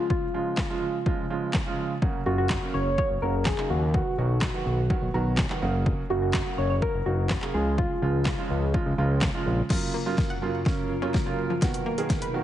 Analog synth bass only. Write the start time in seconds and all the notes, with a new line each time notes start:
2.26 F#1
2.74 F#1
3.10 F#1
3.22 F#1
3.70 D#2
4.18 B1
4.66 B1
5.02 B1
5.14 B1
5.62 F#1
6.10 F#1
6.58 F#1
6.94 F#1
7.06 F#1
7.54 C#2
8.02 C#2
8.50 C#2
8.86 C#2
8.98 C#2
9.46 A#1